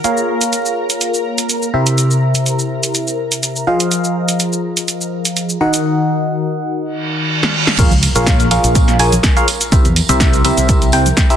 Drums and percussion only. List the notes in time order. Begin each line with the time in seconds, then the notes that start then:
0.04 closed hi-hat, shaker
0.17 shaker
0.41 closed hi-hat, shaker
0.53 closed hi-hat, shaker
0.66 shaker
0.90 closed hi-hat, shaker
1.01 closed hi-hat, shaker
1.14 shaker
1.38 closed hi-hat, shaker
1.49 closed hi-hat, shaker
1.62 shaker
1.87 closed hi-hat, shaker
1.98 closed hi-hat, shaker
2.11 shaker
2.35 closed hi-hat, shaker
2.46 closed hi-hat, shaker
2.59 shaker
2.83 closed hi-hat, shaker
2.95 closed hi-hat, shaker
3.08 shaker
3.32 closed hi-hat, shaker
3.43 closed hi-hat, shaker
3.56 shaker
3.80 closed hi-hat, shaker
3.91 closed hi-hat, shaker
4.04 shaker
4.29 closed hi-hat, shaker
4.40 closed hi-hat, shaker
4.53 shaker
4.77 closed hi-hat, shaker
4.88 closed hi-hat, shaker
5.01 shaker
5.25 closed hi-hat, shaker
5.37 closed hi-hat, shaker
5.50 shaker
5.74 closed hi-hat, shaker
7.43 snare
7.67 snare
7.78 kick, closed hi-hat, crash, tambourine, shaker
7.91 closed hi-hat, tambourine, high conga, shaker
8.03 open hi-hat, tambourine
8.16 closed hi-hat, tambourine, shaker
8.27 kick, snare, closed hi-hat, tambourine, shaker
8.40 closed hi-hat, tambourine, shaker
8.51 open hi-hat, tambourine, high conga
8.64 closed hi-hat, tambourine, shaker
8.75 kick, closed hi-hat, tambourine, shaker
8.88 snare, closed hi-hat, tambourine, shaker
8.99 open hi-hat, tambourine
9.12 closed hi-hat, tambourine, high conga, shaker
9.23 kick, snare, closed hi-hat, tambourine, shaker
9.37 closed hi-hat, tambourine, shaker
9.48 open hi-hat, tambourine
9.61 closed hi-hat, tambourine, shaker
9.72 kick, closed hi-hat, tambourine, shaker
9.85 closed hi-hat, tambourine, high conga, shaker
9.96 open hi-hat, tambourine
10.09 closed hi-hat, tambourine, shaker
10.20 kick, snare, closed hi-hat, tambourine, shaker
10.33 closed hi-hat, tambourine, shaker
10.45 open hi-hat, tambourine, high conga
10.58 closed hi-hat, tambourine, shaker
10.69 kick, closed hi-hat, tambourine, shaker
10.82 closed hi-hat, tambourine, shaker
10.92 open hi-hat, tambourine
11.06 closed hi-hat, tambourine, high conga, shaker
11.17 kick, snare, closed hi-hat, tambourine, shaker
11.30 closed hi-hat, tambourine, shaker